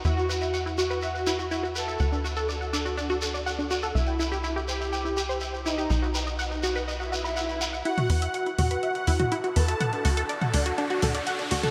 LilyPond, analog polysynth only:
\new Staff \with { instrumentName = "Analog polysynth" } { \time 4/4 \key e \minor \tempo 4 = 123 fis'4. fis'2 a'8~ | a'4 r2. | e'4. g'2 dis'8~ | dis'4 r2. |
fis'4. fis'2 a'8~ | a'4 r2. | }